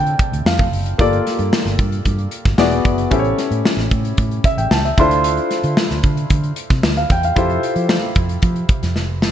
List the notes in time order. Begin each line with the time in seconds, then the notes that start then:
Already playing: D3 C4 E4 F4 A4 D5 G5 A5
0.07 closed hi-hat
0.19 kick, closed hi-hat
0.32 D2, closed hi-hat
0.45 F2 F5, snare
0.59 kick, closed hi-hat
0.72 F#1, open hi-hat
0.86 closed hi-hat
0.98 G1 A#3 F4 G4 A4 D5, kick, closed hi-hat
1.13 closed hi-hat
1.27 snare, closed hi-hat
1.39 G2, closed hi-hat
1.53 snare
1.65 G1, snare
1.79 G2, kick, closed hi-hat
1.92 closed hi-hat
2.05 G2, kick, closed hi-hat
2.18 closed hi-hat
2.31 closed hi-hat
2.45 G1, kick, snare, closed hi-hat
2.58 E1 B3 E4 F#4 G#4 D5, snare
2.72 closed hi-hat
2.85 F#1, kick, closed hi-hat
2.98 closed hi-hat
3.10 A1 C#4 E4 G4 A4 C5, kick, closed hi-hat
3.19 C#5
3.24 closed hi-hat
3.38 snare, closed hi-hat
3.51 A2, closed hi-hat
3.65 snare
3.77 A1, snare, closed hi-hat
3.91 A2, kick, closed hi-hat
4.05 closed hi-hat
4.17 A2, kick, closed hi-hat
4.31 closed hi-hat
4.44 E5, kick, closed hi-hat
4.57 A1 G5, closed hi-hat
4.71 C#2 A5, snare
4.85 E5, closed hi-hat
4.97 D2 D4 E4 F4 A4 C5 C6, kick, closed hi-hat
5.11 closed hi-hat
5.24 closed hi-hat
5.37 closed hi-hat
5.51 snare, closed hi-hat
5.63 D3, closed hi-hat
5.77 snare
5.90 D2, snare, closed hi-hat
6.03 D3, kick, closed hi-hat
6.17 closed hi-hat
6.30 D3, kick, closed hi-hat
6.44 closed hi-hat
6.56 closed hi-hat
6.70 C3, kick, snare, closed hi-hat
6.83 D2, snare
6.97 F5, closed hi-hat
7.10 E2 G5, kick, closed hi-hat
7.23 F5, closed hi-hat
7.36 F2 E4 F4 G4 A4 C5, kick, closed hi-hat
7.50 closed hi-hat
7.63 closed hi-hat
7.76 F3, closed hi-hat
7.89 snare
8.03 closed hi-hat
8.15 F2, kick, closed hi-hat
8.29 closed hi-hat
8.42 F3, kick, closed hi-hat
8.56 closed hi-hat
8.69 kick, closed hi-hat
8.83 F2, snare, closed hi-hat
8.95 F1, snare
9.22 F#1, snare